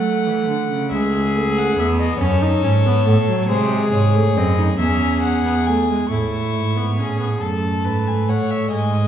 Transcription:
Already playing: cello F#3, viola A3, violin F#5
0.27 cello E3
0.48 cello D3
0.70 cello C#3
0.91 cello C#2, viola G#3, violin G#4 E5
1.36 viola A3
1.58 violin F#5
1.77 cello E2, viola B3, violin E5
2.00 violin D#5
2.20 cello F#2, viola C#4, violin A4 C#5
2.42 viola D#4
2.63 cello G#2, viola C#4
2.86 viola B3
3.06 cello A2, viola A3
3.29 viola F#3
3.49 cello C3, viola G#3, violin G#4 C5
3.92 cello G#2, violin C#5
4.15 viola A3
4.36 cello F#2, viola C4, violin D#5
4.58 viola D#4
4.79 cello E2, viola C#4, violin G#4 E5
5.22 violin F#5
5.45 viola B3
5.66 viola A3, violin G#5
5.90 viola G#3
6.11 cello A2, viola A3, violin E4 C#6
6.54 cello G#2
6.77 viola B3
6.98 cello A2, viola C#4, violin G#4
7.20 viola B3
7.41 cello F#2, viola A3, violin A4 A5
7.85 cello G#2, violin B4
8.07 violin G#5
8.28 cello A2, violin C#5 F#5
8.51 violin E5
8.71 cello G#2, viola G#3, violin D#5 G#5

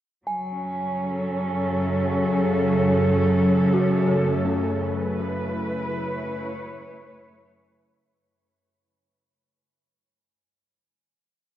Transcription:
0.25 synth drone F#2 C#3, cello section F#3, singing bowl G#5
0.51 cello section C#4
1.09 cello section A4
3.73 synth bell F#4
4.07 synth bell A4
4.18 cello section A3
4.45 synth bell C#4
4.86 cello section B4
5.27 cello section E4
5.94 cello section C#5

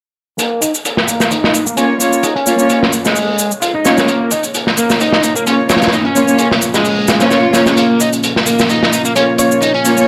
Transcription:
0.39 overdriven electric guitar A#3, analog synth pad A#3 C#4 F4 C#5, closed hi-hat, shaker
0.62 overdriven electric guitar D#4, closed hi-hat, shaker
0.74 closed hi-hat, shaker
0.85 closed hi-hat, shaker
0.97 snare
1.08 overdriven electric guitar A#3, closed hi-hat, shaker
1.20 snare, shaker
1.31 overdriven electric guitar D#4, closed hi-hat, shaker
1.44 snare
1.54 overdriven electric guitar D#4, closed hi-hat, shaker
1.66 overdriven electric guitar A#3, shaker
1.77 string section A#3 C#4 F4 C#5, overdriven electric guitar C#4, closed hi-hat, shaker
2.00 string section A#3 C#4 F4 C#5, closed hi-hat, shaker
2.13 shaker
2.23 overdriven electric guitar D#4, closed hi-hat, shaker
2.36 overdriven electric guitar C#4, closed hi-hat
2.47 string section A#3 C#4 F4 C#5, closed hi-hat, shaker
2.59 string section A#3 C#4 F4 C#5, shaker
2.70 overdriven electric guitar C#4, closed hi-hat, shaker
2.83 snare
2.93 closed hi-hat, shaker
3.05 overdriven electric guitar G#3, snare, shaker
3.16 open hi-hat, shaker
3.39 closed hi-hat, shaker
3.51 shaker
3.62 overdriven electric guitar F4, closed hi-hat, shaker
3.75 overdriven electric guitar D#4
3.85 string section A#3 C#4 F4 C#5, snare, closed hi-hat, shaker
3.97 overdriven electric guitar G#3, snare, shaker
4.08 overdriven electric guitar A#3, closed hi-hat, shaker
4.31 overdriven electric guitar D#4, closed hi-hat, shaker
4.43 closed hi-hat, shaker
4.54 closed hi-hat, shaker
4.67 snare
4.77 overdriven electric guitar A#3, closed hi-hat, shaker
4.90 snare, shaker
5.00 overdriven electric guitar D#4, closed hi-hat, shaker
5.12 snare
5.23 overdriven electric guitar D#4, closed hi-hat, shaker
5.36 overdriven electric guitar A#3, shaker
5.47 string section A#3 C#4 F4 C#5, overdriven electric guitar C#4, closed hi-hat, shaker
5.69 string section A#3 C#4 F4 C#5, snare, closed hi-hat, shaker
5.76 snare, closed hi-hat
5.82 snare, closed hi-hat, shaker
5.87 snare, closed hi-hat
5.92 overdriven electric guitar D#4, closed hi-hat, shaker
6.05 overdriven electric guitar C#4, closed hi-hat
6.16 string section A#3 C#4 F4 C#5, closed hi-hat, shaker
6.28 string section A#3 C#4 F4 C#5, shaker
6.38 overdriven electric guitar C#4, closed hi-hat, shaker
6.51 snare
6.61 closed hi-hat, shaker
6.74 overdriven electric guitar G#3, snare, shaker
6.85 open hi-hat, shaker
7.08 snare, shaker
7.20 string section A#3 C#4 F4 C5, overdriven electric guitar C#4, snare, closed hi-hat, shaker
7.31 string section A#3 C#4 F4 C#5, overdriven electric guitar F4, snare, shaker
7.44 overdriven electric guitar F4
7.53 string section A#3 C#4 F4 C#5, overdriven electric guitar C#4, snare, closed hi-hat, shaker
7.66 overdriven electric guitar G#3, snare, shaker
7.77 overdriven electric guitar A#3, analog synth pad F5, closed hi-hat, shaker
8.00 overdriven electric guitar D#4, closed hi-hat, shaker
8.13 closed hi-hat, shaker
8.23 closed hi-hat, shaker
8.36 snare
8.46 overdriven electric guitar A#3, closed hi-hat, shaker
8.59 snare, shaker
8.70 overdriven electric guitar D#4, closed hi-hat, shaker
8.83 snare
8.93 overdriven electric guitar D#4, closed hi-hat, shaker
9.05 overdriven electric guitar A#3, shaker
9.16 string section A#3 C#4 F4 C#5, overdriven electric guitar C#4, closed hi-hat, shaker
9.38 string section A#3 C#4 F4 C#5, synth pluck C#5, closed hi-hat, shaker
9.51 shaker
9.62 overdriven electric guitar D#4, closed hi-hat, shaker
9.74 overdriven electric guitar C#4, closed hi-hat
9.85 string section A#3 C#4 F4 C#5, closed hi-hat, shaker
9.97 string section A#3 C#4 F4 C#5, shaker

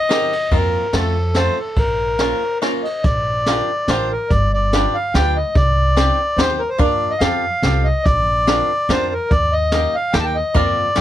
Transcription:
Already playing: accordion D#5
0.09 five-string banjo C4 D#4 G4 A#4, snare, ride
0.33 ride
0.51 upright bass F2, five-string banjo A#3 C4 F4 A#4, accordion A#4, kick, ride
0.93 upright bass F2, five-string banjo A3 C4 F4 A4, accordion A4, snare, ride
1.35 five-string banjo A3 C4 F4 A4, accordion C5, snare, ride
1.60 accordion A4
1.76 upright bass A#1, accordion A#4, kick, ride
2.19 five-string banjo A#3 C#4 F4 A#4, snare, ride
2.62 five-string banjo A#3 C#4 F4 A#4, snare, ride
2.83 accordion D#5, ride
3.03 upright bass A#1, accordion D5, kick, closed hi-hat
3.46 five-string banjo D4 F4 G4 A#4, snare, closed hi-hat
3.88 upright bass A1, five-string banjo D4 F4 G4 A#4, accordion C5, snare, closed hi-hat
4.12 accordion A#4
4.30 upright bass G1, accordion D5, kick, closed hi-hat
4.53 accordion D5
4.73 five-string banjo D4 F4 G4 B4, snare, closed hi-hat
4.95 accordion F5
5.14 upright bass D2, five-string banjo D4 F4 G4 B4, accordion G5, snare, closed hi-hat
5.36 accordion D#5
5.55 upright bass C2, accordion D5, kick, closed hi-hat
5.97 five-string banjo C4 D#4 G4 C5, snare, closed hi-hat
6.37 upright bass D#2, five-string banjo C4 D#4 G4 C5, accordion C5, snare, closed hi-hat
6.59 accordion A#4
6.69 accordion C5
6.78 upright bass F2, five-string banjo A#3 D4 F4 A#4, accordion D5, kick, closed hi-hat
7.10 accordion D#5
7.19 upright bass F2, five-string banjo C4 F4 G4 A4, accordion F5, snare, closed hi-hat
7.62 upright bass C2, five-string banjo C4 F4 G4 A4, snare, closed hi-hat
7.84 accordion D#5
8.04 upright bass A#1, accordion D5, kick, closed hi-hat
8.47 five-string banjo C4 D4 F4 A#4, snare, closed hi-hat
8.89 upright bass F2, five-string banjo C4 D4 F4 A#4, accordion C5, snare, closed hi-hat
9.13 accordion A#4
9.31 upright bass D#2, accordion D5, kick, closed hi-hat
9.53 accordion D#5
9.72 five-string banjo A#3 D#4 G4 A#4, snare, closed hi-hat
9.95 accordion F5
10.13 upright bass D#2, five-string banjo A#3 D#4 G4 A#4, accordion G5, snare, closed hi-hat
10.20 accordion A5
10.25 accordion G5
10.35 accordion D#5
10.54 upright bass F2, five-string banjo A#3 C4 F4 A#4, accordion D5, kick, closed hi-hat
10.95 upright bass F2, five-string banjo A3 C4 F4 G4, snare, closed hi-hat

